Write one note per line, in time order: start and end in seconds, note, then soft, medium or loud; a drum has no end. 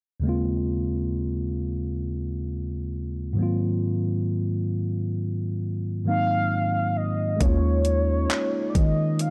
0.20 3.31 D#2 medium
0.20 3.32 C#3 medium
0.20 3.33 G#3 medium
0.25 3.34 A#3 medium
0.25 3.35 C4 medium
0.25 3.36 F4 medium
3.33 6.00 G#2 medium
3.33 6.01 D#3 medium
3.33 6.02 F#3 medium
3.39 6.03 A#3 medium
3.39 6.04 C4 medium
3.39 6.05 F4 medium
6.04 7.40 G#2 soft
6.04 7.40 D#3 soft
6.04 7.41 F#3 soft
6.04 7.38 A#3 soft
6.04 7.42 C4 soft
6.04 6.98 F5 loud
6.09 7.42 D#4 medium
6.97 7.44 D#5 medium
7.36 9.30 G#3 medium
7.36 9.30 A#3 medium
7.41 8.27 D#2 loud
7.41 9.30 C#3 medium
7.41 9.30 F3 medium
7.41 9.30 G#3 medium
7.41 9.30 C#4 medium
7.41 9.30 D#4 medium
7.41 8.71 C#5 loud
7.41 kick loud
7.41 closed hi-hat medium
7.46 9.30 F4 medium
7.85 closed hi-hat medium
8.30 clap loud
8.30 closed hi-hat medium
8.70 8.77 D5 medium
8.75 9.30 D#3 loud
8.75 9.20 D#5 medium
8.75 kick medium
8.75 closed hi-hat medium
9.19 9.30 F5 loud
9.19 closed hi-hat medium